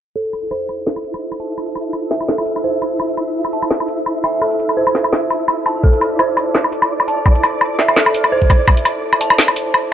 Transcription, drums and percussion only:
0.25 closed hi-hat soft
0.33 closed hi-hat soft
0.33 low woodblock soft
0.36 closed hi-hat soft
0.38 closed hi-hat soft
0.41 closed hi-hat soft
0.43 closed hi-hat soft
0.45 closed hi-hat medium
0.47 closed hi-hat medium
0.49 closed hi-hat medium
0.49 low woodblock medium
0.69 closed hi-hat medium
0.69 low woodblock soft
0.87 snare loud
0.96 low woodblock soft
1.04 closed hi-hat medium
1.14 low woodblock medium
1.32 low woodblock soft
1.40 closed hi-hat medium
1.58 low woodblock soft
1.67 closed hi-hat soft
1.75 closed hi-hat medium
1.75 low woodblock medium
1.93 low woodblock soft
2.11 snare medium
2.11 closed hi-hat medium
2.21 low woodblock soft
2.29 snare loud
2.38 low woodblock medium
2.46 closed hi-hat medium
2.56 low woodblock soft
2.82 closed hi-hat medium
2.82 low woodblock soft
3.00 low woodblock medium
3.09 closed hi-hat soft
3.17 closed hi-hat medium
3.17 low woodblock soft
3.45 low woodblock soft
3.53 closed hi-hat medium
3.62 low woodblock medium
3.71 snare loud
3.80 low woodblock soft
3.88 closed hi-hat medium
4.06 low woodblock soft
4.24 closed hi-hat medium
4.24 low woodblock medium
4.42 low woodblock soft
4.51 closed hi-hat soft
4.59 closed hi-hat medium
4.69 low woodblock soft
4.87 low woodblock medium
4.95 snare medium
4.95 closed hi-hat medium
5.04 low woodblock soft
5.13 snare loud
5.30 closed hi-hat medium
5.30 low woodblock soft
5.48 low woodblock medium
5.66 closed hi-hat medium
5.66 low woodblock soft
5.84 kick loud
5.93 closed hi-hat soft
6.01 closed hi-hat medium
6.01 low woodblock soft
6.19 low woodblock medium
6.37 closed hi-hat medium
6.37 low woodblock soft
6.55 snare loud
6.64 low woodblock soft
6.72 closed hi-hat medium
6.82 low woodblock medium
7.00 low woodblock soft
7.08 closed hi-hat medium
7.26 kick loud
7.26 low woodblock soft
7.35 closed hi-hat soft
7.43 closed hi-hat medium
7.43 low woodblock medium
7.61 low woodblock soft
7.79 snare medium
7.79 closed hi-hat medium
7.88 low woodblock medium
7.96 snare loud
8.06 low woodblock medium
8.14 closed hi-hat medium
8.24 low woodblock soft
8.42 kick medium
8.50 kick loud
8.50 closed hi-hat medium
8.50 low woodblock soft
8.68 kick loud
8.68 low woodblock medium
8.77 closed hi-hat soft
8.85 closed hi-hat medium
8.85 low woodblock soft
9.13 low woodblock medium
9.21 closed hi-hat medium
9.30 low woodblock medium
9.38 snare loud
9.48 low woodblock soft
9.56 closed hi-hat medium
9.74 low woodblock medium

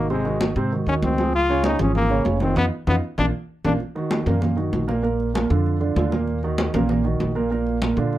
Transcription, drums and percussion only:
0.10 high conga soft
0.25 high conga soft
0.41 high conga medium
0.57 high conga soft
0.72 high conga soft
0.88 high conga soft
1.02 high conga medium
1.18 high conga medium
1.34 high conga soft
1.50 high conga soft
1.64 high conga medium
1.79 high conga soft
1.79 low conga medium
1.95 high conga soft
1.95 low conga medium
2.10 high conga soft
2.25 high conga medium
2.40 high conga medium
2.56 low conga medium
2.87 low conga loud
3.18 low conga loud
3.65 low conga medium
3.80 high conga soft
3.96 high conga soft
4.11 high conga loud
4.27 high conga soft
4.27 low conga medium
4.42 high conga soft
4.42 low conga medium
4.58 high conga soft
4.73 high conga medium
4.89 high conga medium
5.04 high conga soft
5.20 high conga soft
5.35 high conga medium
5.51 high conga soft
5.66 high conga soft
5.81 high conga soft
5.96 high conga medium
6.12 high conga medium
6.27 high conga soft
6.43 high conga soft
6.58 high conga loud
6.74 high conga soft
6.74 low conga medium
6.89 high conga soft
6.89 low conga medium
7.05 high conga soft
7.20 high conga medium
7.52 high conga soft
7.67 high conga soft
7.82 high conga medium
7.98 high conga soft
8.13 high conga soft

